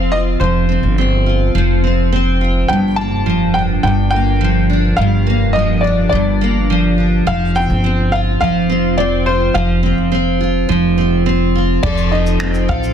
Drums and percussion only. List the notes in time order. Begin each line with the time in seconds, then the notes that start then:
11.83 kick, crash
11.97 shaker
12.27 shaker
12.40 finger snap, shaker
12.54 shaker
12.69 kick
12.83 shaker